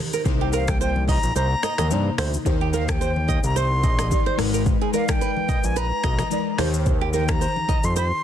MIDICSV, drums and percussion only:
0, 0, Header, 1, 2, 480
1, 0, Start_track
1, 0, Tempo, 550459
1, 224, Time_signature, 4, 2, 24, 8
1, 7181, End_track
2, 0, Start_track
2, 0, Title_t, "Drums"
2, 117, Note_on_c, 9, 82, 82
2, 204, Note_off_c, 9, 82, 0
2, 223, Note_on_c, 9, 36, 116
2, 223, Note_on_c, 9, 82, 63
2, 228, Note_on_c, 9, 64, 85
2, 310, Note_off_c, 9, 82, 0
2, 311, Note_off_c, 9, 36, 0
2, 315, Note_off_c, 9, 64, 0
2, 461, Note_on_c, 9, 82, 60
2, 467, Note_on_c, 9, 63, 51
2, 548, Note_off_c, 9, 82, 0
2, 554, Note_off_c, 9, 63, 0
2, 592, Note_on_c, 9, 82, 75
2, 594, Note_on_c, 9, 26, 112
2, 594, Note_on_c, 9, 36, 97
2, 595, Note_on_c, 9, 37, 126
2, 599, Note_on_c, 9, 63, 72
2, 679, Note_off_c, 9, 82, 0
2, 682, Note_off_c, 9, 26, 0
2, 682, Note_off_c, 9, 36, 0
2, 682, Note_off_c, 9, 37, 0
2, 686, Note_off_c, 9, 63, 0
2, 707, Note_on_c, 9, 82, 77
2, 794, Note_off_c, 9, 82, 0
2, 836, Note_on_c, 9, 63, 78
2, 923, Note_off_c, 9, 63, 0
2, 939, Note_on_c, 9, 64, 73
2, 944, Note_on_c, 9, 36, 88
2, 949, Note_on_c, 9, 46, 75
2, 949, Note_on_c, 9, 82, 55
2, 1026, Note_off_c, 9, 64, 0
2, 1031, Note_off_c, 9, 36, 0
2, 1036, Note_off_c, 9, 46, 0
2, 1036, Note_off_c, 9, 82, 0
2, 1074, Note_on_c, 9, 82, 74
2, 1162, Note_off_c, 9, 82, 0
2, 1185, Note_on_c, 9, 82, 83
2, 1272, Note_off_c, 9, 82, 0
2, 1423, Note_on_c, 9, 26, 80
2, 1423, Note_on_c, 9, 37, 96
2, 1423, Note_on_c, 9, 82, 57
2, 1510, Note_off_c, 9, 26, 0
2, 1510, Note_off_c, 9, 37, 0
2, 1511, Note_off_c, 9, 82, 0
2, 1555, Note_on_c, 9, 26, 75
2, 1555, Note_on_c, 9, 37, 95
2, 1559, Note_on_c, 9, 82, 74
2, 1561, Note_on_c, 9, 63, 81
2, 1642, Note_off_c, 9, 26, 0
2, 1642, Note_off_c, 9, 37, 0
2, 1646, Note_off_c, 9, 82, 0
2, 1648, Note_off_c, 9, 63, 0
2, 1664, Note_on_c, 9, 82, 75
2, 1666, Note_on_c, 9, 63, 74
2, 1751, Note_off_c, 9, 82, 0
2, 1753, Note_off_c, 9, 63, 0
2, 1902, Note_on_c, 9, 63, 74
2, 1902, Note_on_c, 9, 64, 75
2, 1903, Note_on_c, 9, 26, 77
2, 1904, Note_on_c, 9, 37, 95
2, 1908, Note_on_c, 9, 46, 80
2, 1908, Note_on_c, 9, 82, 59
2, 1989, Note_off_c, 9, 63, 0
2, 1989, Note_off_c, 9, 64, 0
2, 1991, Note_off_c, 9, 26, 0
2, 1991, Note_off_c, 9, 37, 0
2, 1995, Note_off_c, 9, 46, 0
2, 1995, Note_off_c, 9, 82, 0
2, 2040, Note_on_c, 9, 82, 82
2, 2127, Note_off_c, 9, 82, 0
2, 2145, Note_on_c, 9, 36, 117
2, 2146, Note_on_c, 9, 82, 65
2, 2147, Note_on_c, 9, 64, 87
2, 2232, Note_off_c, 9, 36, 0
2, 2233, Note_off_c, 9, 82, 0
2, 2234, Note_off_c, 9, 64, 0
2, 2384, Note_on_c, 9, 82, 65
2, 2386, Note_on_c, 9, 63, 53
2, 2471, Note_off_c, 9, 82, 0
2, 2474, Note_off_c, 9, 63, 0
2, 2516, Note_on_c, 9, 36, 100
2, 2516, Note_on_c, 9, 82, 78
2, 2518, Note_on_c, 9, 26, 110
2, 2519, Note_on_c, 9, 37, 126
2, 2521, Note_on_c, 9, 63, 75
2, 2603, Note_off_c, 9, 36, 0
2, 2603, Note_off_c, 9, 82, 0
2, 2606, Note_off_c, 9, 26, 0
2, 2606, Note_off_c, 9, 37, 0
2, 2608, Note_off_c, 9, 63, 0
2, 2629, Note_on_c, 9, 82, 76
2, 2716, Note_off_c, 9, 82, 0
2, 2758, Note_on_c, 9, 63, 79
2, 2845, Note_off_c, 9, 63, 0
2, 2859, Note_on_c, 9, 64, 69
2, 2865, Note_on_c, 9, 36, 89
2, 2871, Note_on_c, 9, 82, 54
2, 2946, Note_off_c, 9, 64, 0
2, 2953, Note_off_c, 9, 36, 0
2, 2958, Note_off_c, 9, 82, 0
2, 2997, Note_on_c, 9, 82, 74
2, 3084, Note_off_c, 9, 82, 0
2, 3106, Note_on_c, 9, 82, 82
2, 3194, Note_off_c, 9, 82, 0
2, 3345, Note_on_c, 9, 82, 57
2, 3346, Note_on_c, 9, 36, 103
2, 3433, Note_off_c, 9, 36, 0
2, 3433, Note_off_c, 9, 82, 0
2, 3476, Note_on_c, 9, 26, 72
2, 3476, Note_on_c, 9, 37, 95
2, 3480, Note_on_c, 9, 82, 73
2, 3482, Note_on_c, 9, 63, 83
2, 3563, Note_off_c, 9, 26, 0
2, 3564, Note_off_c, 9, 37, 0
2, 3568, Note_off_c, 9, 82, 0
2, 3569, Note_off_c, 9, 63, 0
2, 3586, Note_on_c, 9, 82, 74
2, 3588, Note_on_c, 9, 36, 95
2, 3588, Note_on_c, 9, 63, 77
2, 3673, Note_off_c, 9, 82, 0
2, 3675, Note_off_c, 9, 36, 0
2, 3675, Note_off_c, 9, 63, 0
2, 3825, Note_on_c, 9, 26, 73
2, 3825, Note_on_c, 9, 63, 70
2, 3825, Note_on_c, 9, 64, 72
2, 3826, Note_on_c, 9, 37, 99
2, 3830, Note_on_c, 9, 46, 84
2, 3830, Note_on_c, 9, 82, 59
2, 3912, Note_off_c, 9, 26, 0
2, 3912, Note_off_c, 9, 63, 0
2, 3912, Note_off_c, 9, 64, 0
2, 3913, Note_off_c, 9, 37, 0
2, 3917, Note_off_c, 9, 46, 0
2, 3917, Note_off_c, 9, 82, 0
2, 3959, Note_on_c, 9, 82, 80
2, 4047, Note_off_c, 9, 82, 0
2, 4065, Note_on_c, 9, 36, 114
2, 4065, Note_on_c, 9, 82, 62
2, 4069, Note_on_c, 9, 64, 84
2, 4152, Note_off_c, 9, 36, 0
2, 4152, Note_off_c, 9, 82, 0
2, 4156, Note_off_c, 9, 64, 0
2, 4304, Note_on_c, 9, 82, 62
2, 4309, Note_on_c, 9, 63, 51
2, 4391, Note_off_c, 9, 82, 0
2, 4396, Note_off_c, 9, 63, 0
2, 4434, Note_on_c, 9, 82, 76
2, 4436, Note_on_c, 9, 36, 98
2, 4437, Note_on_c, 9, 26, 110
2, 4437, Note_on_c, 9, 37, 127
2, 4441, Note_on_c, 9, 63, 70
2, 4522, Note_off_c, 9, 82, 0
2, 4523, Note_off_c, 9, 36, 0
2, 4524, Note_off_c, 9, 26, 0
2, 4525, Note_off_c, 9, 37, 0
2, 4529, Note_off_c, 9, 63, 0
2, 4547, Note_on_c, 9, 82, 73
2, 4635, Note_off_c, 9, 82, 0
2, 4679, Note_on_c, 9, 63, 79
2, 4767, Note_off_c, 9, 63, 0
2, 4782, Note_on_c, 9, 64, 69
2, 4785, Note_on_c, 9, 36, 86
2, 4789, Note_on_c, 9, 82, 55
2, 4869, Note_off_c, 9, 64, 0
2, 4872, Note_off_c, 9, 36, 0
2, 4877, Note_off_c, 9, 82, 0
2, 4915, Note_on_c, 9, 82, 80
2, 5003, Note_off_c, 9, 82, 0
2, 5025, Note_on_c, 9, 82, 80
2, 5112, Note_off_c, 9, 82, 0
2, 5263, Note_on_c, 9, 26, 79
2, 5264, Note_on_c, 9, 37, 95
2, 5264, Note_on_c, 9, 82, 56
2, 5265, Note_on_c, 9, 36, 104
2, 5351, Note_off_c, 9, 26, 0
2, 5351, Note_off_c, 9, 37, 0
2, 5351, Note_off_c, 9, 82, 0
2, 5352, Note_off_c, 9, 36, 0
2, 5394, Note_on_c, 9, 26, 78
2, 5394, Note_on_c, 9, 37, 96
2, 5398, Note_on_c, 9, 82, 71
2, 5403, Note_on_c, 9, 63, 85
2, 5481, Note_off_c, 9, 26, 0
2, 5481, Note_off_c, 9, 37, 0
2, 5485, Note_off_c, 9, 82, 0
2, 5490, Note_off_c, 9, 63, 0
2, 5504, Note_on_c, 9, 82, 70
2, 5507, Note_on_c, 9, 63, 77
2, 5591, Note_off_c, 9, 82, 0
2, 5594, Note_off_c, 9, 63, 0
2, 5742, Note_on_c, 9, 26, 75
2, 5742, Note_on_c, 9, 37, 99
2, 5744, Note_on_c, 9, 63, 74
2, 5744, Note_on_c, 9, 64, 73
2, 5746, Note_on_c, 9, 46, 81
2, 5746, Note_on_c, 9, 82, 58
2, 5829, Note_off_c, 9, 26, 0
2, 5829, Note_off_c, 9, 37, 0
2, 5831, Note_off_c, 9, 63, 0
2, 5831, Note_off_c, 9, 64, 0
2, 5834, Note_off_c, 9, 46, 0
2, 5834, Note_off_c, 9, 82, 0
2, 5877, Note_on_c, 9, 82, 83
2, 5964, Note_off_c, 9, 82, 0
2, 5983, Note_on_c, 9, 82, 64
2, 5984, Note_on_c, 9, 36, 120
2, 5988, Note_on_c, 9, 64, 82
2, 6070, Note_off_c, 9, 82, 0
2, 6071, Note_off_c, 9, 36, 0
2, 6075, Note_off_c, 9, 64, 0
2, 6220, Note_on_c, 9, 82, 59
2, 6227, Note_on_c, 9, 63, 52
2, 6307, Note_off_c, 9, 82, 0
2, 6314, Note_off_c, 9, 63, 0
2, 6352, Note_on_c, 9, 82, 75
2, 6354, Note_on_c, 9, 36, 98
2, 6355, Note_on_c, 9, 26, 110
2, 6355, Note_on_c, 9, 37, 127
2, 6360, Note_on_c, 9, 63, 74
2, 6439, Note_off_c, 9, 82, 0
2, 6441, Note_off_c, 9, 36, 0
2, 6442, Note_off_c, 9, 26, 0
2, 6442, Note_off_c, 9, 37, 0
2, 6447, Note_off_c, 9, 63, 0
2, 6466, Note_on_c, 9, 82, 74
2, 6553, Note_off_c, 9, 82, 0
2, 6596, Note_on_c, 9, 63, 78
2, 6683, Note_off_c, 9, 63, 0
2, 6698, Note_on_c, 9, 64, 73
2, 6703, Note_on_c, 9, 36, 91
2, 6707, Note_on_c, 9, 82, 53
2, 6786, Note_off_c, 9, 64, 0
2, 6791, Note_off_c, 9, 36, 0
2, 6794, Note_off_c, 9, 82, 0
2, 6833, Note_on_c, 9, 82, 78
2, 6920, Note_off_c, 9, 82, 0
2, 6942, Note_on_c, 9, 82, 86
2, 7030, Note_off_c, 9, 82, 0
2, 7181, End_track
0, 0, End_of_file